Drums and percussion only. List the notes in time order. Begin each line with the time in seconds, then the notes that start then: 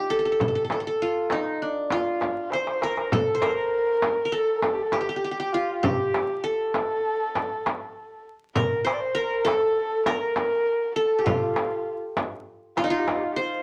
0.11 darbuka ka
0.40 frame drum, darbuka dum
0.70 darbuka tek, frame drum
1.01 darbuka ka
1.30 darbuka tek, frame drum
1.46 darbuka ka
1.90 darbuka tek, frame drum
2.21 darbuka tek, frame drum
2.52 darbuka tek
2.67 darbuka ka
2.82 darbuka tek
2.97 darbuka ka
3.12 frame drum, darbuka dum
3.42 darbuka tek, frame drum
4.02 darbuka tek, frame drum
4.62 darbuka tek, frame drum
4.92 darbuka tek, frame drum
5.84 darbuka dum, frame drum
6.14 darbuka tek, frame drum
6.74 darbuka tek, frame drum
7.35 darbuka tek, frame drum
7.66 darbuka tek, frame drum
8.55 frame drum, darbuka dum
8.87 darbuka tek
9.46 darbuka tek, frame drum
10.06 darbuka tek, frame drum
10.36 darbuka tek, frame drum
11.27 frame drum, darbuka dum
11.56 darbuka tek, frame drum
12.17 darbuka tek, frame drum
12.33 darbuka ka
12.77 darbuka tek, frame drum
13.08 darbuka tek, frame drum
13.38 darbuka ka